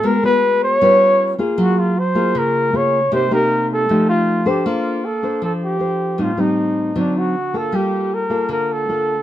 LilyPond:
<<
  \new Staff \with { instrumentName = "Flugelhorn" } { \time 4/4 \key bes \major \tempo 4 = 156 bes'8 ces''4 des''2 r8 | ges'8 f'8 c''4 bes'4 des''4 | c''8 bes'4 a'4 f'4 g'8 | f'4 a'4 a'8 g'4. |
f'8 ees'4. d'8 fis'4 a'8 | g'4 bes'4 bes'8 a'4. | }
  \new Staff \with { instrumentName = "Nylon-string guitar" } { \time 4/4 \key bes \major << { <ces' ges' bes'>8 <ces' ges'>4. <cis' f' b'>4. <bes f' aes'>8~ | <bes f' aes'>4 r8 <bes f' aes'>4. <bes f' aes'>8 r8 | <bes ees' g'>8 <bes ees' g'>4. <a ees' g'>4. <d' a' c''>8~ | <d' a' c''>4 r8 <d' a' c''>4. <d' a' c''>4 |
<g c' ees'>8 <g c' ees'>4. <fis c' ees'>4 r8 <bes f' a'>8~ | <bes f' a'>4. <bes f' a'>4. <bes f' a'>8 r8 | } \\ { aes2 g2 | ges2 des2 | c2 f2 | bes2 f2 |
a,2 d2 | g2 d2 | } >> }
>>